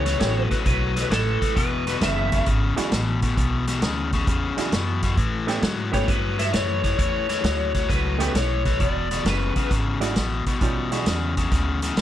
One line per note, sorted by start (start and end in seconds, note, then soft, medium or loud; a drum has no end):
0.00 0.19 C#2 medium
0.00 0.43 C#5 medium
0.05 0.18 A2 medium
0.05 0.19 E3 medium
0.05 snare soft
0.05 closed hi-hat medium
0.20 0.49 A1 medium
0.20 0.48 A2 medium
0.20 0.48 F#3 medium
0.20 0.48 A3 soft
0.20 0.48 B3 soft
0.20 0.48 C#4 soft
0.20 0.48 G4 medium
0.20 snare loud
0.20 closed hi-hat medium
0.43 0.67 B4 medium
0.51 0.64 A2 medium
0.51 0.64 F#3 medium
0.51 muted upright bass stroke soft
0.51 kick medium
0.51 snare soft
0.51 closed hi-hat medium
0.65 1.10 B1 medium
0.65 0.93 A2 medium
0.65 0.93 F#3 medium
0.65 1.08 B4 medium
0.65 kick loud
0.65 closed hi-hat medium
0.96 1.09 A2 medium
0.96 1.10 F#3 medium
0.96 snare soft
0.96 closed hi-hat medium
1.10 1.39 A1 medium
1.10 1.38 A2 medium
1.10 1.39 E3 medium
1.10 1.56 A4 medium
1.10 snare loud
1.10 closed hi-hat medium
1.41 1.54 A2 medium
1.41 1.55 E3 medium
1.41 muted upright bass stroke soft
1.41 kick medium
1.41 snare soft
1.41 closed hi-hat medium
1.56 2.00 E1 medium
1.56 1.83 E2 medium
1.56 1.84 B2 medium
1.56 2.03 B4 medium
1.56 kick loud
1.56 closed hi-hat medium
1.87 2.00 E2 medium
1.87 2.00 B2 medium
1.87 snare soft
1.87 closed hi-hat medium
2.01 2.45 F#1 medium
2.01 2.29 E2 medium
2.01 2.29 C#3 medium
2.01 2.44 E5 medium
2.01 snare loud
2.01 closed hi-hat medium
2.32 2.45 E2 medium
2.32 2.45 C#3 medium
2.32 kick medium
2.32 snare soft
2.32 closed hi-hat medium
2.46 2.75 G#1 medium
2.46 2.74 E2 medium
2.46 2.74 C#3 medium
2.46 kick loud
2.46 closed hi-hat medium
2.76 2.90 E2 medium
2.76 2.91 C#3 medium
2.76 2.90 G#3 medium
2.76 2.90 D4 medium
2.76 2.90 E4 medium
2.76 2.91 F#4 medium
2.76 muted upright bass stroke soft
2.76 snare soft
2.76 closed hi-hat medium
2.92 3.36 A1 medium
2.92 3.19 E2 medium
2.92 3.20 B2 medium
2.92 snare medium
2.92 closed hi-hat medium
3.22 3.36 E2 medium
3.22 3.36 B2 medium
3.22 kick medium
3.22 snare soft
3.22 closed hi-hat medium
3.37 3.81 B1 medium
3.37 3.65 E2 medium
3.37 3.65 B2 medium
3.37 kick loud
3.37 closed hi-hat medium
3.68 3.81 E2 medium
3.68 3.81 B2 medium
3.68 snare soft
3.68 closed hi-hat medium
3.82 4.26 D2 medium
3.82 4.10 E2 medium
3.82 4.10 C#3 medium
3.82 snare loud
3.82 closed hi-hat medium
4.13 4.26 E2 medium
4.13 4.26 C#3 medium
4.13 kick medium
4.13 snare soft
4.13 closed hi-hat medium
4.27 4.56 E2 medium
4.27 4.55 E2 medium
4.27 4.55 C#3 medium
4.27 kick loud
4.27 closed hi-hat medium
4.57 4.71 E2 medium
4.57 4.71 C#3 medium
4.57 4.70 G#3 medium
4.57 4.71 D4 medium
4.57 4.71 E4 medium
4.57 4.71 F#4 medium
4.57 muted upright bass stroke soft
4.57 snare soft
4.57 closed hi-hat medium
4.72 5.00 E2 medium
4.72 5.16 F#2 medium
4.72 5.01 B2 medium
4.72 snare medium
4.72 closed hi-hat medium
5.03 5.16 E2 medium
5.03 5.17 B2 medium
5.03 kick medium
5.03 snare soft
5.03 closed hi-hat medium
5.17 5.61 A2 medium
5.17 5.45 A2 medium
5.17 5.46 E3 medium
5.17 kick medium
5.17 closed hi-hat medium
5.47 5.61 A2 medium
5.47 5.61 E3 medium
5.47 5.61 A3 medium
5.47 5.61 B3 medium
5.47 5.61 C#4 medium
5.47 5.62 G4 medium
5.47 snare soft
5.47 closed hi-hat medium
5.62 6.06 G#2 medium
5.62 5.90 A2 medium
5.62 5.91 F#3 medium
5.62 snare loud
5.62 closed hi-hat medium
5.92 6.07 A2 medium
5.92 6.07 F#3 medium
5.92 6.06 A3 medium
5.92 6.06 B3 medium
5.92 6.06 C#4 medium
5.92 6.07 G4 medium
5.92 6.09 C#5 medium
5.92 kick medium
5.92 snare soft
5.92 closed hi-hat medium
6.08 6.52 G2 medium
6.08 6.36 A2 medium
6.08 6.36 F#3 medium
6.08 6.40 B4 medium
6.08 kick loud
6.08 closed hi-hat medium
6.38 6.52 A2 medium
6.38 6.52 F#3 medium
6.38 6.53 E5 medium
6.38 snare soft
6.38 closed hi-hat medium
6.53 6.97 F#2 medium
6.53 6.81 A2 medium
6.53 6.81 E3 medium
6.53 6.98 C#5 medium
6.53 snare medium
6.53 closed hi-hat medium
6.83 6.97 A2 medium
6.83 6.97 E3 medium
6.83 kick medium
6.83 snare soft
6.83 closed hi-hat medium
6.98 7.43 E2 medium
6.98 7.26 A2 medium
6.98 7.26 E3 medium
6.98 7.92 C#5 medium
6.98 kick medium
6.98 closed hi-hat medium
7.29 7.42 A2 medium
7.29 7.43 E3 medium
7.29 snare soft
7.29 closed hi-hat medium
7.44 7.88 D2 medium
7.44 7.71 A2 medium
7.44 7.72 F#3 medium
7.44 snare loud
7.44 closed hi-hat medium
7.75 7.88 A2 medium
7.75 7.88 F#3 medium
7.75 kick medium
7.75 snare soft
7.75 closed hi-hat medium
7.89 8.33 C#2 medium
7.89 8.17 A2 medium
7.89 8.17 F#3 medium
7.89 8.36 B4 medium
7.89 kick loud
7.89 snare soft
7.89 closed hi-hat medium
8.19 8.33 A2 medium
8.19 8.34 F#3 medium
8.19 8.32 A3 medium
8.19 8.32 B3 medium
8.19 8.33 C#4 medium
8.19 8.33 G4 medium
8.19 snare soft
8.19 closed hi-hat medium
8.34 8.78 B1 medium
8.34 8.62 A2 medium
8.34 8.62 E3 medium
8.34 8.81 C#5 medium
8.34 snare medium
8.34 closed hi-hat medium
8.65 8.79 A2 medium
8.65 8.79 E3 medium
8.65 kick medium
8.65 snare soft
8.65 closed hi-hat soft
8.80 9.24 E1 medium
8.80 9.08 E2 medium
8.80 9.08 B2 medium
8.80 9.27 D5 medium
8.80 kick medium
8.80 closed hi-hat medium
9.11 9.24 E2 medium
9.11 9.24 B2 medium
9.11 snare soft
9.11 closed hi-hat medium
9.25 9.53 F#1 medium
9.25 9.53 E2 medium
9.25 9.53 C#3 medium
9.25 9.68 B4 medium
9.25 snare loud
9.25 closed hi-hat medium
9.56 9.69 E2 medium
9.56 9.69 C#3 medium
9.56 kick medium
9.56 snare soft
9.56 closed hi-hat medium
9.71 10.15 G#1 medium
9.71 9.98 E2 medium
9.71 9.98 C#3 medium
9.71 kick loud
9.71 snare soft
9.71 closed hi-hat medium
10.00 10.14 E2 medium
10.00 10.15 C#3 medium
10.00 10.14 G#3 medium
10.00 10.14 D4 medium
10.00 10.14 E4 medium
10.00 10.14 F#4 medium
10.00 snare soft
10.00 closed hi-hat medium
10.16 10.44 A1 medium
10.16 10.43 E2 medium
10.16 10.44 B2 medium
10.16 snare medium
10.16 closed hi-hat medium
10.47 10.60 E2 medium
10.47 10.60 B2 medium
10.47 muted upright bass stroke soft
10.47 kick medium
10.47 snare soft
10.47 closed hi-hat medium
10.61 11.05 B1 medium
10.61 10.89 E2 medium
10.61 10.89 B2 medium
10.61 10.88 G3 medium
10.61 10.89 C#4 soft
10.61 10.89 D#4 soft
10.61 10.89 F4 medium
10.61 kick loud
10.61 closed hi-hat medium
10.91 11.05 E2 medium
10.91 11.05 B2 medium
10.91 11.88 G#3 medium
10.91 11.88 D4 soft
10.91 11.88 E4 medium
10.91 11.88 F#4 medium
10.91 snare soft
10.91 closed hi-hat medium
11.06 11.50 E2 medium
11.06 11.34 E2 medium
11.06 11.34 C#3 medium
11.06 snare loud
11.06 closed hi-hat medium
11.37 11.50 E2 medium
11.37 11.50 C#3 medium
11.37 kick medium
11.37 snare soft
11.37 closed hi-hat medium
11.52 11.96 D2 medium
11.52 11.79 E2 medium
11.52 11.80 C#3 medium
11.52 kick loud
11.52 snare soft
11.52 closed hi-hat medium
11.82 11.96 E2 medium
11.82 11.96 C#3 medium
11.82 snare soft
11.82 closed hi-hat medium
11.97 12.01 E2 medium
11.97 12.01 B2 medium
11.97 snare medium
11.97 closed hi-hat medium